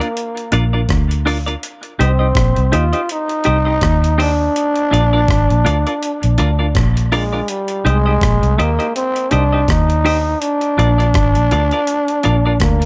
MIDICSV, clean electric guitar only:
0, 0, Header, 1, 2, 480
1, 0, Start_track
1, 0, Tempo, 732601
1, 1065, Time_signature, 4, 2, 24, 8
1, 8423, End_track
2, 0, Start_track
2, 0, Title_t, "Clean electric guitar"
2, 0, Program_c, 0, 27
2, 1, Note_on_c, 0, 74, 65
2, 3, Note_on_c, 0, 70, 62
2, 5, Note_on_c, 0, 65, 57
2, 9, Note_on_c, 0, 62, 56
2, 44, Note_off_c, 0, 74, 0
2, 45, Note_off_c, 0, 70, 0
2, 46, Note_off_c, 0, 65, 0
2, 48, Note_off_c, 0, 62, 0
2, 341, Note_on_c, 0, 62, 78
2, 347, Note_on_c, 0, 65, 90
2, 348, Note_on_c, 0, 70, 82
2, 350, Note_on_c, 0, 74, 86
2, 415, Note_off_c, 0, 62, 0
2, 418, Note_off_c, 0, 65, 0
2, 418, Note_off_c, 0, 70, 0
2, 420, Note_off_c, 0, 74, 0
2, 480, Note_on_c, 0, 74, 60
2, 482, Note_on_c, 0, 70, 53
2, 486, Note_on_c, 0, 65, 57
2, 489, Note_on_c, 0, 62, 50
2, 524, Note_off_c, 0, 74, 0
2, 525, Note_off_c, 0, 70, 0
2, 527, Note_off_c, 0, 65, 0
2, 528, Note_off_c, 0, 62, 0
2, 824, Note_on_c, 0, 62, 81
2, 828, Note_on_c, 0, 65, 82
2, 829, Note_on_c, 0, 70, 85
2, 832, Note_on_c, 0, 74, 88
2, 896, Note_off_c, 0, 62, 0
2, 899, Note_off_c, 0, 65, 0
2, 899, Note_off_c, 0, 70, 0
2, 901, Note_off_c, 0, 74, 0
2, 959, Note_on_c, 0, 74, 69
2, 965, Note_on_c, 0, 70, 67
2, 970, Note_on_c, 0, 62, 44
2, 970, Note_on_c, 0, 65, 51
2, 1003, Note_off_c, 0, 74, 0
2, 1006, Note_off_c, 0, 70, 0
2, 1009, Note_off_c, 0, 62, 0
2, 1009, Note_off_c, 0, 65, 0
2, 1306, Note_on_c, 0, 63, 76
2, 1309, Note_on_c, 0, 67, 88
2, 1314, Note_on_c, 0, 72, 84
2, 1317, Note_on_c, 0, 75, 77
2, 1377, Note_off_c, 0, 63, 0
2, 1379, Note_off_c, 0, 67, 0
2, 1382, Note_off_c, 0, 72, 0
2, 1383, Note_off_c, 0, 75, 0
2, 1436, Note_on_c, 0, 75, 59
2, 1440, Note_on_c, 0, 72, 47
2, 1445, Note_on_c, 0, 67, 39
2, 1446, Note_on_c, 0, 63, 42
2, 1482, Note_off_c, 0, 75, 0
2, 1484, Note_off_c, 0, 72, 0
2, 1486, Note_off_c, 0, 67, 0
2, 1487, Note_off_c, 0, 63, 0
2, 1784, Note_on_c, 0, 63, 70
2, 1787, Note_on_c, 0, 67, 87
2, 1792, Note_on_c, 0, 72, 91
2, 1793, Note_on_c, 0, 75, 84
2, 1856, Note_off_c, 0, 63, 0
2, 1858, Note_off_c, 0, 67, 0
2, 1860, Note_off_c, 0, 72, 0
2, 1861, Note_off_c, 0, 75, 0
2, 1918, Note_on_c, 0, 75, 63
2, 1922, Note_on_c, 0, 72, 65
2, 1926, Note_on_c, 0, 67, 59
2, 1929, Note_on_c, 0, 63, 47
2, 1963, Note_off_c, 0, 75, 0
2, 1965, Note_off_c, 0, 72, 0
2, 1967, Note_off_c, 0, 67, 0
2, 1968, Note_off_c, 0, 63, 0
2, 2260, Note_on_c, 0, 63, 78
2, 2262, Note_on_c, 0, 67, 81
2, 2268, Note_on_c, 0, 72, 87
2, 2269, Note_on_c, 0, 75, 78
2, 2335, Note_off_c, 0, 63, 0
2, 2336, Note_off_c, 0, 67, 0
2, 2339, Note_off_c, 0, 72, 0
2, 2339, Note_off_c, 0, 75, 0
2, 2394, Note_on_c, 0, 75, 58
2, 2399, Note_on_c, 0, 72, 64
2, 2403, Note_on_c, 0, 63, 57
2, 2403, Note_on_c, 0, 67, 49
2, 2441, Note_off_c, 0, 75, 0
2, 2443, Note_off_c, 0, 72, 0
2, 2445, Note_off_c, 0, 63, 0
2, 2445, Note_off_c, 0, 67, 0
2, 2740, Note_on_c, 0, 63, 86
2, 2743, Note_on_c, 0, 67, 79
2, 2748, Note_on_c, 0, 72, 93
2, 2750, Note_on_c, 0, 75, 79
2, 2814, Note_off_c, 0, 63, 0
2, 2816, Note_off_c, 0, 67, 0
2, 2818, Note_off_c, 0, 72, 0
2, 2820, Note_off_c, 0, 75, 0
2, 3219, Note_on_c, 0, 62, 81
2, 3225, Note_on_c, 0, 65, 92
2, 3229, Note_on_c, 0, 70, 90
2, 3230, Note_on_c, 0, 74, 100
2, 3294, Note_off_c, 0, 62, 0
2, 3297, Note_off_c, 0, 65, 0
2, 3299, Note_off_c, 0, 70, 0
2, 3300, Note_off_c, 0, 74, 0
2, 3361, Note_on_c, 0, 74, 62
2, 3364, Note_on_c, 0, 70, 66
2, 3369, Note_on_c, 0, 65, 50
2, 3370, Note_on_c, 0, 62, 43
2, 3404, Note_off_c, 0, 74, 0
2, 3406, Note_off_c, 0, 70, 0
2, 3408, Note_off_c, 0, 65, 0
2, 3409, Note_off_c, 0, 62, 0
2, 3700, Note_on_c, 0, 62, 78
2, 3706, Note_on_c, 0, 65, 89
2, 3709, Note_on_c, 0, 70, 85
2, 3713, Note_on_c, 0, 74, 92
2, 3775, Note_off_c, 0, 62, 0
2, 3778, Note_off_c, 0, 65, 0
2, 3779, Note_off_c, 0, 70, 0
2, 3781, Note_off_c, 0, 74, 0
2, 3844, Note_on_c, 0, 70, 50
2, 3844, Note_on_c, 0, 74, 62
2, 3849, Note_on_c, 0, 65, 57
2, 3853, Note_on_c, 0, 62, 54
2, 3886, Note_off_c, 0, 70, 0
2, 3886, Note_off_c, 0, 74, 0
2, 3888, Note_off_c, 0, 65, 0
2, 3890, Note_off_c, 0, 62, 0
2, 4182, Note_on_c, 0, 62, 86
2, 4188, Note_on_c, 0, 65, 90
2, 4190, Note_on_c, 0, 70, 80
2, 4192, Note_on_c, 0, 74, 88
2, 4255, Note_off_c, 0, 62, 0
2, 4258, Note_off_c, 0, 65, 0
2, 4259, Note_off_c, 0, 70, 0
2, 4260, Note_off_c, 0, 74, 0
2, 4317, Note_on_c, 0, 74, 54
2, 4320, Note_on_c, 0, 70, 50
2, 4324, Note_on_c, 0, 65, 50
2, 4327, Note_on_c, 0, 62, 42
2, 4362, Note_off_c, 0, 74, 0
2, 4363, Note_off_c, 0, 70, 0
2, 4366, Note_off_c, 0, 65, 0
2, 4367, Note_off_c, 0, 62, 0
2, 4666, Note_on_c, 0, 62, 85
2, 4668, Note_on_c, 0, 65, 83
2, 4670, Note_on_c, 0, 70, 98
2, 4676, Note_on_c, 0, 74, 98
2, 4738, Note_off_c, 0, 62, 0
2, 4739, Note_off_c, 0, 65, 0
2, 4739, Note_off_c, 0, 70, 0
2, 4743, Note_off_c, 0, 74, 0
2, 4800, Note_on_c, 0, 74, 66
2, 4804, Note_on_c, 0, 70, 54
2, 4808, Note_on_c, 0, 65, 56
2, 4809, Note_on_c, 0, 62, 51
2, 4844, Note_off_c, 0, 74, 0
2, 4846, Note_off_c, 0, 70, 0
2, 4848, Note_off_c, 0, 62, 0
2, 4848, Note_off_c, 0, 65, 0
2, 5143, Note_on_c, 0, 63, 83
2, 5146, Note_on_c, 0, 67, 81
2, 5149, Note_on_c, 0, 72, 90
2, 5154, Note_on_c, 0, 75, 79
2, 5216, Note_off_c, 0, 63, 0
2, 5218, Note_off_c, 0, 67, 0
2, 5219, Note_off_c, 0, 72, 0
2, 5222, Note_off_c, 0, 75, 0
2, 5280, Note_on_c, 0, 75, 66
2, 5281, Note_on_c, 0, 72, 56
2, 5287, Note_on_c, 0, 67, 54
2, 5289, Note_on_c, 0, 63, 50
2, 5324, Note_off_c, 0, 72, 0
2, 5324, Note_off_c, 0, 75, 0
2, 5327, Note_off_c, 0, 67, 0
2, 5328, Note_off_c, 0, 63, 0
2, 5625, Note_on_c, 0, 63, 76
2, 5628, Note_on_c, 0, 67, 75
2, 5631, Note_on_c, 0, 75, 97
2, 5632, Note_on_c, 0, 72, 84
2, 5697, Note_off_c, 0, 63, 0
2, 5699, Note_off_c, 0, 67, 0
2, 5700, Note_off_c, 0, 72, 0
2, 5700, Note_off_c, 0, 75, 0
2, 5758, Note_on_c, 0, 75, 60
2, 5761, Note_on_c, 0, 72, 57
2, 5766, Note_on_c, 0, 67, 55
2, 5768, Note_on_c, 0, 63, 48
2, 5803, Note_off_c, 0, 75, 0
2, 5804, Note_off_c, 0, 72, 0
2, 5806, Note_off_c, 0, 67, 0
2, 5807, Note_off_c, 0, 63, 0
2, 6102, Note_on_c, 0, 63, 71
2, 6107, Note_on_c, 0, 67, 85
2, 6109, Note_on_c, 0, 72, 79
2, 6112, Note_on_c, 0, 75, 82
2, 6175, Note_off_c, 0, 63, 0
2, 6178, Note_off_c, 0, 67, 0
2, 6179, Note_off_c, 0, 72, 0
2, 6180, Note_off_c, 0, 75, 0
2, 6241, Note_on_c, 0, 75, 61
2, 6245, Note_on_c, 0, 72, 59
2, 6249, Note_on_c, 0, 67, 50
2, 6251, Note_on_c, 0, 63, 53
2, 6284, Note_off_c, 0, 75, 0
2, 6286, Note_off_c, 0, 72, 0
2, 6288, Note_off_c, 0, 67, 0
2, 6289, Note_off_c, 0, 63, 0
2, 6582, Note_on_c, 0, 63, 78
2, 6586, Note_on_c, 0, 67, 89
2, 6589, Note_on_c, 0, 72, 102
2, 6594, Note_on_c, 0, 75, 96
2, 6655, Note_off_c, 0, 63, 0
2, 6657, Note_off_c, 0, 67, 0
2, 6659, Note_off_c, 0, 72, 0
2, 6661, Note_off_c, 0, 75, 0
2, 7063, Note_on_c, 0, 62, 84
2, 7067, Note_on_c, 0, 65, 78
2, 7069, Note_on_c, 0, 70, 87
2, 7072, Note_on_c, 0, 74, 90
2, 7136, Note_off_c, 0, 62, 0
2, 7138, Note_off_c, 0, 65, 0
2, 7139, Note_off_c, 0, 70, 0
2, 7140, Note_off_c, 0, 74, 0
2, 7197, Note_on_c, 0, 74, 63
2, 7201, Note_on_c, 0, 70, 51
2, 7206, Note_on_c, 0, 65, 54
2, 7207, Note_on_c, 0, 62, 49
2, 7242, Note_off_c, 0, 74, 0
2, 7244, Note_off_c, 0, 70, 0
2, 7246, Note_off_c, 0, 65, 0
2, 7247, Note_off_c, 0, 62, 0
2, 7546, Note_on_c, 0, 62, 67
2, 7548, Note_on_c, 0, 65, 71
2, 7549, Note_on_c, 0, 70, 76
2, 7554, Note_on_c, 0, 74, 89
2, 7617, Note_off_c, 0, 62, 0
2, 7618, Note_off_c, 0, 65, 0
2, 7619, Note_off_c, 0, 70, 0
2, 7621, Note_off_c, 0, 74, 0
2, 7682, Note_on_c, 0, 74, 65
2, 7687, Note_on_c, 0, 70, 62
2, 7690, Note_on_c, 0, 65, 55
2, 7692, Note_on_c, 0, 62, 52
2, 7724, Note_off_c, 0, 74, 0
2, 7727, Note_off_c, 0, 70, 0
2, 7728, Note_off_c, 0, 65, 0
2, 7729, Note_off_c, 0, 62, 0
2, 8018, Note_on_c, 0, 62, 84
2, 8024, Note_on_c, 0, 65, 80
2, 8026, Note_on_c, 0, 70, 85
2, 8026, Note_on_c, 0, 74, 85
2, 8093, Note_off_c, 0, 62, 0
2, 8096, Note_off_c, 0, 65, 0
2, 8097, Note_off_c, 0, 70, 0
2, 8097, Note_off_c, 0, 74, 0
2, 8161, Note_on_c, 0, 74, 61
2, 8167, Note_on_c, 0, 65, 48
2, 8167, Note_on_c, 0, 70, 60
2, 8169, Note_on_c, 0, 62, 43
2, 8204, Note_off_c, 0, 74, 0
2, 8207, Note_off_c, 0, 65, 0
2, 8207, Note_off_c, 0, 70, 0
2, 8208, Note_off_c, 0, 62, 0
2, 8423, End_track
0, 0, End_of_file